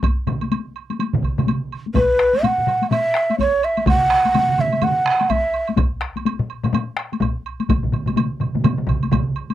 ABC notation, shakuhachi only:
X:1
M:4/4
L:1/16
Q:"Swing 16ths" 1/4=125
K:none
V:1 name="Shakuhachi"
z16 | B4 ^f4 e4 ^c2 e2 | ^f6 e2 f4 e3 z | z16 |
z16 |]